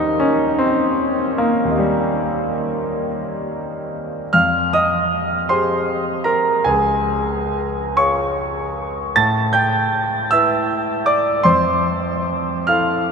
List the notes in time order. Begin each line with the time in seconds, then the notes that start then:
Already playing: D#2 D#4 G4 D#5 F5 A#5
0.20 C#4
0.58 C4
1.38 A#3
1.65 D#2 G4
1.71 D#5 F5
1.77 G3 A#5
4.33 F2 F5 F6
4.73 D#5 D#6
5.49 G4 G#4 C5 C6
6.24 A#4 A#5
6.64 C#2 G#4 G#5
7.97 F4 G#4 C#5 C#6
9.16 A2 A5 A6
9.53 G5 G6
10.31 E4 B4 E5 E6
11.06 D5 D6
11.44 F2 C5 C6
12.67 E4 A4 F5 F6